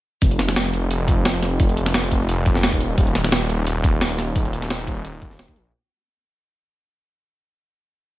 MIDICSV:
0, 0, Header, 1, 3, 480
1, 0, Start_track
1, 0, Tempo, 344828
1, 305, Time_signature, 4, 2, 24, 8
1, 11391, End_track
2, 0, Start_track
2, 0, Title_t, "Detuned saw bass"
2, 0, Program_c, 0, 39
2, 305, Note_on_c, 0, 29, 107
2, 2207, Note_off_c, 0, 29, 0
2, 2224, Note_on_c, 0, 29, 106
2, 3772, Note_off_c, 0, 29, 0
2, 3793, Note_on_c, 0, 27, 91
2, 4127, Note_off_c, 0, 27, 0
2, 4146, Note_on_c, 0, 27, 102
2, 6047, Note_off_c, 0, 27, 0
2, 6065, Note_on_c, 0, 27, 108
2, 7612, Note_off_c, 0, 27, 0
2, 7633, Note_on_c, 0, 39, 83
2, 7742, Note_on_c, 0, 34, 104
2, 7763, Note_off_c, 0, 39, 0
2, 7961, Note_off_c, 0, 34, 0
2, 11391, End_track
3, 0, Start_track
3, 0, Title_t, "Drums"
3, 303, Note_on_c, 9, 36, 121
3, 303, Note_on_c, 9, 42, 101
3, 432, Note_off_c, 9, 42, 0
3, 432, Note_on_c, 9, 42, 39
3, 432, Note_on_c, 9, 82, 27
3, 443, Note_off_c, 9, 36, 0
3, 544, Note_off_c, 9, 42, 0
3, 544, Note_off_c, 9, 82, 0
3, 544, Note_on_c, 9, 40, 58
3, 544, Note_on_c, 9, 42, 72
3, 544, Note_on_c, 9, 82, 61
3, 673, Note_off_c, 9, 40, 0
3, 673, Note_on_c, 9, 40, 49
3, 683, Note_off_c, 9, 42, 0
3, 683, Note_off_c, 9, 82, 0
3, 784, Note_on_c, 9, 38, 122
3, 784, Note_on_c, 9, 42, 93
3, 812, Note_off_c, 9, 40, 0
3, 924, Note_off_c, 9, 38, 0
3, 924, Note_off_c, 9, 42, 0
3, 1023, Note_on_c, 9, 42, 70
3, 1023, Note_on_c, 9, 82, 59
3, 1162, Note_off_c, 9, 42, 0
3, 1162, Note_off_c, 9, 82, 0
3, 1262, Note_on_c, 9, 42, 105
3, 1401, Note_off_c, 9, 42, 0
3, 1503, Note_on_c, 9, 36, 105
3, 1505, Note_on_c, 9, 42, 69
3, 1505, Note_on_c, 9, 82, 62
3, 1643, Note_off_c, 9, 36, 0
3, 1644, Note_off_c, 9, 42, 0
3, 1644, Note_off_c, 9, 82, 0
3, 1745, Note_on_c, 9, 38, 124
3, 1745, Note_on_c, 9, 42, 91
3, 1873, Note_on_c, 9, 82, 28
3, 1884, Note_off_c, 9, 38, 0
3, 1884, Note_off_c, 9, 42, 0
3, 1985, Note_off_c, 9, 82, 0
3, 1985, Note_on_c, 9, 40, 38
3, 1985, Note_on_c, 9, 42, 72
3, 1985, Note_on_c, 9, 82, 60
3, 2124, Note_off_c, 9, 40, 0
3, 2124, Note_off_c, 9, 42, 0
3, 2124, Note_off_c, 9, 82, 0
3, 2223, Note_on_c, 9, 42, 102
3, 2224, Note_on_c, 9, 36, 124
3, 2353, Note_off_c, 9, 42, 0
3, 2353, Note_on_c, 9, 42, 36
3, 2353, Note_on_c, 9, 82, 28
3, 2363, Note_off_c, 9, 36, 0
3, 2465, Note_off_c, 9, 42, 0
3, 2465, Note_off_c, 9, 82, 0
3, 2465, Note_on_c, 9, 42, 69
3, 2465, Note_on_c, 9, 82, 60
3, 2591, Note_on_c, 9, 40, 48
3, 2604, Note_off_c, 9, 42, 0
3, 2604, Note_off_c, 9, 82, 0
3, 2705, Note_on_c, 9, 38, 125
3, 2705, Note_on_c, 9, 42, 96
3, 2731, Note_off_c, 9, 40, 0
3, 2835, Note_on_c, 9, 82, 28
3, 2845, Note_off_c, 9, 38, 0
3, 2845, Note_off_c, 9, 42, 0
3, 2944, Note_off_c, 9, 82, 0
3, 2944, Note_on_c, 9, 36, 67
3, 2944, Note_on_c, 9, 42, 67
3, 2944, Note_on_c, 9, 82, 58
3, 3083, Note_off_c, 9, 42, 0
3, 3083, Note_off_c, 9, 82, 0
3, 3084, Note_off_c, 9, 36, 0
3, 3185, Note_on_c, 9, 42, 93
3, 3324, Note_off_c, 9, 42, 0
3, 3425, Note_on_c, 9, 36, 109
3, 3427, Note_on_c, 9, 42, 64
3, 3427, Note_on_c, 9, 82, 59
3, 3556, Note_on_c, 9, 38, 37
3, 3564, Note_off_c, 9, 36, 0
3, 3566, Note_off_c, 9, 42, 0
3, 3566, Note_off_c, 9, 82, 0
3, 3666, Note_off_c, 9, 38, 0
3, 3666, Note_on_c, 9, 38, 121
3, 3666, Note_on_c, 9, 42, 92
3, 3793, Note_on_c, 9, 36, 60
3, 3796, Note_on_c, 9, 82, 27
3, 3805, Note_off_c, 9, 38, 0
3, 3805, Note_off_c, 9, 42, 0
3, 3906, Note_off_c, 9, 82, 0
3, 3906, Note_on_c, 9, 42, 64
3, 3906, Note_on_c, 9, 82, 56
3, 3933, Note_off_c, 9, 36, 0
3, 4045, Note_off_c, 9, 42, 0
3, 4045, Note_off_c, 9, 82, 0
3, 4145, Note_on_c, 9, 36, 119
3, 4146, Note_on_c, 9, 42, 96
3, 4273, Note_off_c, 9, 42, 0
3, 4273, Note_on_c, 9, 42, 35
3, 4273, Note_on_c, 9, 82, 27
3, 4285, Note_off_c, 9, 36, 0
3, 4387, Note_off_c, 9, 42, 0
3, 4387, Note_off_c, 9, 82, 0
3, 4387, Note_on_c, 9, 40, 58
3, 4387, Note_on_c, 9, 42, 65
3, 4387, Note_on_c, 9, 82, 59
3, 4515, Note_off_c, 9, 40, 0
3, 4515, Note_on_c, 9, 40, 49
3, 4526, Note_off_c, 9, 42, 0
3, 4526, Note_off_c, 9, 82, 0
3, 4625, Note_on_c, 9, 38, 123
3, 4625, Note_on_c, 9, 42, 93
3, 4654, Note_off_c, 9, 40, 0
3, 4764, Note_off_c, 9, 38, 0
3, 4764, Note_off_c, 9, 42, 0
3, 4865, Note_on_c, 9, 42, 65
3, 4865, Note_on_c, 9, 82, 58
3, 5004, Note_off_c, 9, 42, 0
3, 5004, Note_off_c, 9, 82, 0
3, 5104, Note_on_c, 9, 42, 94
3, 5244, Note_off_c, 9, 42, 0
3, 5345, Note_on_c, 9, 36, 113
3, 5346, Note_on_c, 9, 42, 64
3, 5346, Note_on_c, 9, 82, 59
3, 5484, Note_off_c, 9, 36, 0
3, 5485, Note_off_c, 9, 42, 0
3, 5485, Note_off_c, 9, 82, 0
3, 5586, Note_on_c, 9, 38, 125
3, 5586, Note_on_c, 9, 42, 89
3, 5714, Note_on_c, 9, 82, 26
3, 5725, Note_off_c, 9, 38, 0
3, 5725, Note_off_c, 9, 42, 0
3, 5826, Note_off_c, 9, 82, 0
3, 5826, Note_on_c, 9, 40, 36
3, 5826, Note_on_c, 9, 42, 64
3, 5826, Note_on_c, 9, 82, 55
3, 5966, Note_off_c, 9, 40, 0
3, 5966, Note_off_c, 9, 42, 0
3, 5966, Note_off_c, 9, 82, 0
3, 6065, Note_on_c, 9, 36, 125
3, 6065, Note_on_c, 9, 42, 95
3, 6196, Note_off_c, 9, 42, 0
3, 6196, Note_on_c, 9, 42, 34
3, 6196, Note_on_c, 9, 82, 27
3, 6204, Note_off_c, 9, 36, 0
3, 6309, Note_off_c, 9, 42, 0
3, 6309, Note_off_c, 9, 82, 0
3, 6309, Note_on_c, 9, 42, 65
3, 6309, Note_on_c, 9, 82, 61
3, 6435, Note_on_c, 9, 40, 46
3, 6448, Note_off_c, 9, 42, 0
3, 6448, Note_off_c, 9, 82, 0
3, 6548, Note_on_c, 9, 38, 125
3, 6548, Note_on_c, 9, 42, 90
3, 6574, Note_off_c, 9, 40, 0
3, 6676, Note_on_c, 9, 82, 28
3, 6687, Note_off_c, 9, 38, 0
3, 6687, Note_off_c, 9, 42, 0
3, 6784, Note_on_c, 9, 36, 69
3, 6788, Note_off_c, 9, 82, 0
3, 6788, Note_on_c, 9, 42, 64
3, 6788, Note_on_c, 9, 82, 61
3, 6924, Note_off_c, 9, 36, 0
3, 6927, Note_off_c, 9, 42, 0
3, 6927, Note_off_c, 9, 82, 0
3, 7025, Note_on_c, 9, 42, 92
3, 7165, Note_off_c, 9, 42, 0
3, 7264, Note_on_c, 9, 36, 112
3, 7265, Note_on_c, 9, 42, 64
3, 7265, Note_on_c, 9, 82, 61
3, 7394, Note_on_c, 9, 38, 36
3, 7403, Note_off_c, 9, 36, 0
3, 7404, Note_off_c, 9, 42, 0
3, 7404, Note_off_c, 9, 82, 0
3, 7505, Note_off_c, 9, 38, 0
3, 7505, Note_on_c, 9, 38, 122
3, 7505, Note_on_c, 9, 42, 92
3, 7631, Note_on_c, 9, 82, 27
3, 7632, Note_on_c, 9, 36, 62
3, 7644, Note_off_c, 9, 38, 0
3, 7644, Note_off_c, 9, 42, 0
3, 7741, Note_off_c, 9, 82, 0
3, 7741, Note_on_c, 9, 42, 67
3, 7741, Note_on_c, 9, 82, 58
3, 7771, Note_off_c, 9, 36, 0
3, 7880, Note_off_c, 9, 42, 0
3, 7880, Note_off_c, 9, 82, 0
3, 11391, End_track
0, 0, End_of_file